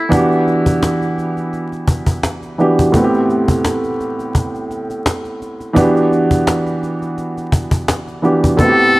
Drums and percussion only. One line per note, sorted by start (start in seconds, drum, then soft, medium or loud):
0.12 cajon bass loud
0.31 cajon slap soft
0.48 cajon slap soft
0.66 cajon bass medium
0.83 cajon slap loud
0.83 cajon slap medium
1.02 cajon slap soft
1.18 cajon slap soft
1.37 cajon slap soft
1.53 cajon slap medium
1.72 cajon slap soft
1.88 cajon bass loud
2.06 cajon bass medium
2.23 cajon slap loud
2.23 cajon slap medium
2.42 cajon slap soft
2.59 cajon slap soft
2.79 cajon bass medium
2.94 cajon bass loud
3.13 cajon slap soft
3.29 cajon slap soft
3.48 cajon bass medium
3.65 cajon slap loud
3.65 cajon slap medium
3.84 cajon slap soft
4.00 cajon slap soft
4.19 cajon slap soft
4.35 cajon bass medium
4.35 cajon slap medium
4.55 cajon slap soft
4.71 cajon slap soft
4.90 cajon slap soft
5.06 cajon slap loud
5.06 cajon slap medium
5.25 cajon slap soft
5.42 cajon slap soft
5.60 cajon slap soft
5.76 cajon bass loud
5.96 cajon slap soft
6.12 cajon slap soft
6.31 cajon bass medium
6.47 cajon slap loud
6.47 cajon slap medium
6.67 cajon slap soft
6.83 cajon slap soft
7.02 cajon slap soft
7.18 cajon slap medium
7.37 cajon slap soft
7.52 cajon bass medium
7.71 cajon bass medium
7.88 cajon slap loud
7.88 cajon slap medium
8.07 cajon slap soft
8.24 cajon slap soft
8.44 cajon bass medium
8.59 cajon bass loud
8.78 cajon slap soft
8.94 cajon slap soft